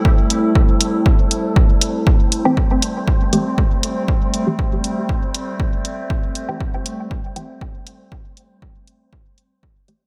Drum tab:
HH |-x-x-x-x|-x-x-x-x|-x-x-x-x|-x-x-x-x|
BD |o-o-o-o-|o-o-o-o-|o-o-o-o-|o-o-o-o-|

HH |-x-x-x-x|
BD |o-o-o-o-|